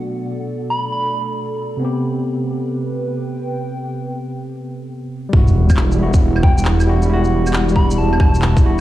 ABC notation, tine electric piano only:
X:1
M:4/4
L:1/8
Q:"Swing 16ths" 1/4=136
K:Em
V:1 name="Tine electric piano"
[B,,A,DF]8 | [C,B,CG]8- | [C,B,CG]6 z2 | [G,EF]3 [G,EF]3 z [G,EF] |
[G,EF]3 [G,EF]3 z [G,EF] |]